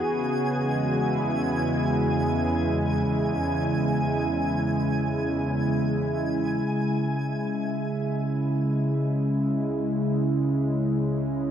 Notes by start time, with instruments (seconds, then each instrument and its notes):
Already playing: analog synth pad B3 F#4 G#4, synth texture G#5
0.03 double bass section E2, analog synth pad C#3
0.52 analog synth pad G#3
0.85 analog synth pad E4
6.65 double bass section C#2, synth drone C#3 C#4